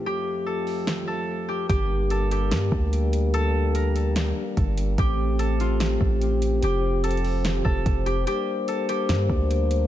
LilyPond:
<<
  \new Staff \with { instrumentName = "Harp" } { \time 4/4 \key g \minor \tempo 4 = 146 g'4 a'4. a'4 g'8 | g'4 a'8 g'8 r2 | a'4 bes'4 r2 | g'4 a'8 f'8 r2 |
g'4 a'4. a'4 g'8 | g'4 a'8 g'8 r2 | }
  \new Staff \with { instrumentName = "French horn section" } { \time 4/4 \key g \minor << { <f, f g'>1 | <g bes d'>1~ | <g bes d'>1 | <a g'>1 |
<f c''>1 | <g bes d'>1 | } \\ { a1 | g'1~ | g'1 | c'1~ |
c'1 | r1 | } >> }
  \new Staff \with { instrumentName = "808-style bass" } { \clef bass \time 4/4 \key g \minor r1 | g,,2 g,8 d,4.~ | d,2~ d,8 r8 g,,4 | a,,2~ a,,8 a,,4. |
f,,2~ f,,8 f,,8 f,,4 | r2 g,8 d,4. | }
  \new DrumStaff \with { instrumentName = "Drums" } \drummode { \time 4/4 r4 r8 hho8 sn4 r4 | <hh bd>4 hh8 hh8 <hh sn>8 bd8 hh8 hh8 | hh4 hh8 hh8 <hh sn>4 <hh bd>8 hh8 | <hh bd>4 hh8 hh8 <hh sn>8 bd8 hh8 hh8 |
hh4 \tuplet 3/2 { hh16 hh16 hh16 hho16 r16 r16 } <hh sn>8 bd8 <hh bd>8 hh8 | hh4 hh8 hh8 <hh sn>8 bd8 hh8 hh8 | }
>>